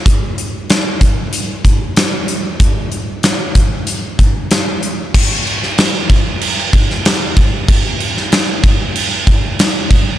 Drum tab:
CC |----------------|----------------|x-x-x-x-x-x-x-x-|x-x-x-x-x-x-x-x-|
HH |x-x-x-x-x-x-x-x-|x-x-x-x-x-x-x-x-|----------------|----------------|
SD |----o-------o---|----o-------o---|---oo------oo---|---oo-------o---|
BD |o-----o---o-----|o-----o---o-----|o-----o---o---o-|o-----o---o---o-|